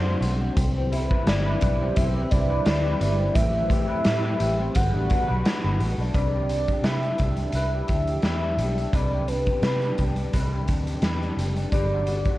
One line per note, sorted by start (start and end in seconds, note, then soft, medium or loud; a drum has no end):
0.00 0.15 F#2 medium
0.00 0.64 D3 medium
0.00 0.54 F#3 medium
0.00 0.54 A3 medium
0.00 0.40 C4 medium
0.00 4.71 C4 medium
0.00 0.54 D4 medium
0.00 0.19 F#4 medium
0.00 0.19 D5 medium
0.06 1.11 C5 medium
0.21 0.49 B1 medium
0.21 0.64 F#4 medium
0.21 closed hi-hat medium
0.41 0.76 C4 medium
0.57 1.12 C2 loud
0.57 3.33 G3 medium
0.57 4.72 E4 medium
0.57 4.71 G4 medium
0.57 4.72 B4 medium
0.57 kick loud
0.57 closed hi-hat loud
0.76 1.80 C4 medium
0.92 1.27 E4 medium
0.92 closed hi-hat medium
1.11 1.45 B4 medium
1.11 kick medium
1.26 1.54 G1 loud
1.26 1.61 E4 medium
1.26 1.98 D5 medium
1.26 snare loud
1.26 closed hi-hat medium
1.46 2.49 B4 medium
1.61 1.90 B1 medium
1.61 2.31 E4 medium
1.61 kick loud
1.61 closed hi-hat medium
1.81 2.15 C4 medium
1.96 2.24 B1 medium
1.96 2.32 E5 medium
1.96 kick loud
1.96 closed hi-hat loud
2.16 3.18 C4 medium
2.30 2.60 C2 medium
2.30 2.64 E4 medium
2.30 3.00 D5 loud
2.30 kick loud
2.30 closed hi-hat medium
2.50 2.84 B4 medium
2.65 2.94 D2 loud
2.65 2.99 E4 medium
2.65 snare loud
2.65 closed hi-hat medium
2.85 3.56 B4 medium
3.00 3.29 G1 medium
3.00 3.43 E4 medium
3.00 3.36 D5 medium
3.00 closed hi-hat medium
3.19 3.43 C4 medium
3.34 3.91 A1 loud
3.34 4.82 A2 loud
3.34 4.74 A3 medium
3.34 4.77 E5 loud
3.34 kick loud
3.34 closed hi-hat loud
3.53 4.58 C4 medium
3.69 4.04 G4 medium
3.69 kick medium
3.69 closed hi-hat medium
3.88 4.24 B4 medium
4.04 4.33 A2 medium
4.04 4.39 G4 medium
4.04 snare loud
4.04 closed hi-hat medium
4.24 5.27 B4 medium
4.40 4.68 A1 medium
4.40 5.08 G4 medium
4.40 closed hi-hat medium
4.59 4.82 C4 medium
4.74 4.91 G1 loud
4.74 6.13 D3 medium
4.74 8.24 G3 medium
4.74 6.13 G3 medium
4.74 6.13 B3 medium
4.74 6.13 F#4 medium
4.74 6.13 B4 medium
4.74 5.80 F#5 loud
4.74 kick loud
4.74 closed hi-hat loud
4.93 5.07 A1 medium
4.93 5.98 D4 medium
5.08 5.42 F#4 medium
5.08 kick medium
5.08 closed hi-hat medium
5.27 5.42 B1 medium
5.27 5.62 B4 medium
5.43 5.78 F#4 medium
5.43 snare loud
5.43 closed hi-hat medium
5.62 5.76 G1 medium
5.62 6.14 B4 medium
5.79 5.95 A1 loud
5.79 6.22 F#4 medium
5.79 open hi-hat medium
5.98 6.11 B1 medium
5.98 6.50 D4 medium
6.14 6.70 C2 medium
6.14 7.54 C3 medium
6.14 6.84 B4 medium
6.14 6.85 D5 loud
6.14 kick loud
6.14 closed hi-hat loud
6.33 6.69 G4 soft
6.49 7.03 D4 medium
6.49 closed hi-hat medium
6.68 7.19 G4 medium
6.68 kick medium
6.68 closed hi-hat soft
6.83 7.11 C3 medium
6.83 7.55 B4 medium
6.83 7.53 E5 loud
6.83 snare loud
6.83 closed hi-hat medium
7.03 7.38 D4 medium
7.03 closed hi-hat soft
7.18 7.47 C2 medium
7.18 7.75 G4 soft
7.18 kick medium
7.18 closed hi-hat medium
7.36 7.89 D4 medium
7.36 closed hi-hat soft
7.52 7.81 C2 loud
7.52 8.24 B4 medium
7.52 8.96 E5 loud
7.52 closed hi-hat medium
7.75 8.08 G4 soft
7.88 8.17 D2 medium
7.88 8.42 D4 medium
7.88 kick medium
7.88 closed hi-hat medium
8.07 8.59 G4 medium
8.07 closed hi-hat medium
8.22 8.59 E2 medium
8.22 8.94 B4 medium
8.22 snare loud
8.22 closed hi-hat medium
8.43 8.78 D4 soft
8.57 8.86 B1 medium
8.57 9.13 G4 soft
8.57 closed hi-hat medium
8.78 9.28 D4 soft
8.78 closed hi-hat soft
8.93 9.49 C2 medium
8.93 10.32 C3 medium
8.93 9.63 B4 medium
8.93 9.29 D5 loud
8.93 kick loud
8.93 closed hi-hat medium
9.13 9.48 G4 medium
9.28 9.83 D4 medium
9.28 10.67 B4 loud
9.28 closed hi-hat medium
9.46 9.98 G4 medium
9.46 kick medium
9.46 closed hi-hat soft
9.62 9.90 C3 medium
9.62 10.33 B4 medium
9.62 snare loud
9.62 closed hi-hat medium
9.82 10.17 D4 medium
9.82 closed hi-hat soft
9.98 10.26 C2 medium
9.98 10.52 G4 medium
9.98 kick medium
9.98 closed hi-hat medium
10.16 10.68 D4 medium
10.16 closed hi-hat soft
10.33 10.68 C2 medium
10.33 11.80 C3 medium
10.33 11.03 B4 medium
10.33 kick medium
10.33 closed hi-hat medium
10.53 10.88 G4 medium
10.68 10.96 D2 medium
10.68 11.23 D4 medium
10.68 kick medium
10.68 closed hi-hat medium
10.87 11.38 G4 medium
10.87 closed hi-hat soft
11.02 11.30 E2 medium
11.02 11.74 B4 medium
11.02 snare loud
11.02 closed hi-hat medium
11.23 11.57 D4 medium
11.23 closed hi-hat soft
11.37 11.65 F#1 medium
11.37 11.92 G4 soft
11.37 closed hi-hat medium
11.56 12.08 D4 medium
11.56 closed hi-hat soft
11.72 12.28 G1 medium
11.72 12.38 G3 medium
11.72 12.38 B4 medium
11.72 12.38 D5 loud
11.72 kick loud
11.72 closed hi-hat medium
11.93 12.28 F#4 medium
12.07 12.38 D4 medium
12.07 closed hi-hat medium
12.25 12.38 F#4 medium
12.25 kick medium
12.25 closed hi-hat soft